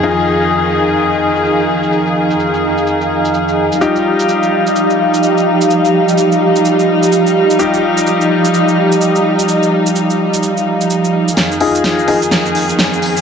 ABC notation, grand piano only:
X:1
M:4/4
L:1/8
Q:"Swing 16ths" 1/4=127
K:Fm
V:1 name="Grand piano"
[EFA]8- | [EFA]8 | [EFG]8- | [EFG]8 |
[EFG]8- | [EFG]8 | z [EFA]2 [EFA] z4 |]